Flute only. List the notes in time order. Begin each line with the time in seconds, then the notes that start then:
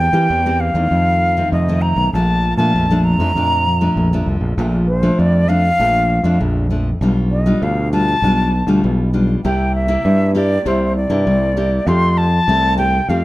0.00 G5
0.60 F5
1.52 D#5
1.82 A#5
2.13 A5
2.57 A5
3.04 A#5
4.87 C5
5.19 D5
5.49 F5
7.31 D#5
7.63 F5
7.92 A5
9.45 G5
9.75 E5
10.36 D5
10.67 C5
10.96 D5
11.88 C6
12.18 A5
12.78 G5
13.09 F5